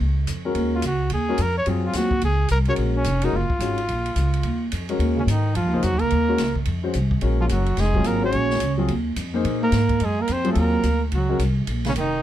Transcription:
0.00 C#2
0.27 F2, hi-hat pedal, ride
0.45 G#3 C#4 F#4 A#4
0.55 D#2, ride
0.75 F4
0.82 C#2, hi-hat pedal, ride
0.87 F#4
1.10 D#2 G#4, ride
1.29 G#3 C#4 F#4 A#4
1.38 F2, hi-hat pedal, ride
1.42 A#4
1.58 C#5
1.66 F#2 F#3 C4 F4 G#4, ride
1.86 F4
1.93 D#2 F#4, snare, hi-hat pedal, ride
2.11 kick
2.22 C#2 G#4, ride
2.48 C2 A#4, hi-hat pedal, ride
2.65 G#3 C#4 F#4 A#4 C#5, ride
2.76 A#1, ride
2.97 C#4
3.04 F1, hi-hat pedal, ride
3.22 G#3 C#4 D#4 F#4 A#4, ride
3.33 F#1 F4
3.50 muted upright bass stroke, kick
3.59 G#1 G#3 C#4 F#4 C#5, hi-hat pedal, ride
3.78 ride
3.88 A#1, ride
4.06 ride
4.16 C#2, hi-hat pedal, ride
4.34 ride
4.43 D#2, ride
4.72 F2, hi-hat pedal, ride
4.89 G#3 C#4 F#4 A#4, ride
4.99 D#2, ride
5.17 C#3 C#4
5.27 G#2 D#3 D#4, hi-hat pedal, ride
5.54 F#2 F3 F4, ride
5.66 D#2
5.73 C#2 A#3 D#4 G#4 C5
5.81 F2 F#3 F#4, hi-hat pedal, ride
5.93 D#2
5.98 C#2 A#3 A#4, ride
6.11 D#2, ride
6.28 G#3 C#4 F#4 A#4
6.38 C#2, snare, hi-hat pedal, ride
6.55 kick
6.65 F2, ride
6.83 G#3 C#4 F#4 C5
6.94 C2, hi-hat pedal, ride
7.11 kick
7.21 A#1 G#3 C#4 F#4 A#4, ride
7.40 F3 F4
7.49 F#1 F#3 F#4, hi-hat pedal, ride
7.66 ride
7.77 F1 G#3 G#4, snare, ride
7.94 F#3 C4 F4 G#4, kick
8.04 G#1 A#3 A#4, hi-hat pedal, ride
8.23 G#3 C#4 F#4 C#5
8.32 A#1, ride
8.50 snare
8.60 C#2, hi-hat pedal, ride
8.78 F#3 C4 F4 G#4
8.88 D#2, ride
9.16 F2, hi-hat pedal, ride
9.34 A#3 D#4 G#4 C5
9.45 A#2, ride
9.62 A#3 A#4
9.72 G#2, snare, hi-hat pedal, ride
9.89 kick, ride
10.00 F#2 G#3, ride
10.05 G#4
10.20 A#3 A#4
10.28 F2 C4, hi-hat pedal, ride
10.32 C5
10.45 F#3 C4 F4 G#4, ride
10.51 A3 A4
10.55 D#2 A#3, ride
10.59 A#4
10.83 D2, hi-hat pedal, ride
11.12 C#2 F#3 F#4, ride
11.29 G#3 C#4 F#4 A#4
11.39 C2, hi-hat pedal, ride
11.67 A#1, ride
11.85 C#3, snare, ride
11.89 C#4
11.96 F1 D#3, hi-hat pedal, ride
12.00 D#4

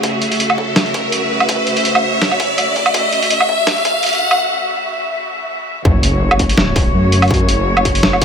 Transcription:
Already playing: C#3 A3 F#4, riser
0.03 E5, kick, closed hi-hat
0.22 closed hi-hat
0.32 open hi-hat
0.40 closed hi-hat
0.50 low woodblock
0.58 kick
0.76 snare, closed hi-hat
0.86 open hi-hat
0.94 kick, closed hi-hat
1.12 closed hi-hat
1.40 low woodblock
1.49 kick, closed hi-hat
1.67 closed hi-hat
1.77 open hi-hat
1.85 closed hi-hat
1.95 low woodblock
2.22 snare, closed hi-hat
2.31 low woodblock
2.40 kick, open hi-hat
2.58 closed hi-hat, low woodblock
2.76 kick, closed hi-hat
2.86 low woodblock
2.94 kick, closed hi-hat
3.12 closed hi-hat
3.22 open hi-hat
3.30 closed hi-hat
3.40 low woodblock
3.49 kick
3.67 snare, closed hi-hat
3.77 open hi-hat
3.85 kick, closed hi-hat
4.03 closed hi-hat
4.06 closed hi-hat
4.09 closed hi-hat
4.13 closed hi-hat
4.15 closed hi-hat
4.18 closed hi-hat
4.31 low woodblock
5.85 F#1 C#3 A3 F#4 C#5, kick, sub drop
6.03 closed hi-hat
6.31 low woodblock
6.39 kick, closed hi-hat
6.49 open hi-hat
6.58 snare
6.76 kick, open hi-hat
6.94 F#2
7.12 closed hi-hat
7.22 open hi-hat, low woodblock
7.28 kick, open hi-hat
7.34 open hi-hat
7.49 F#1, closed hi-hat
7.77 low woodblock
7.85 kick, closed hi-hat
7.95 open hi-hat
8.03 snare
8.13 low woodblock
8.22 kick, closed hi-hat

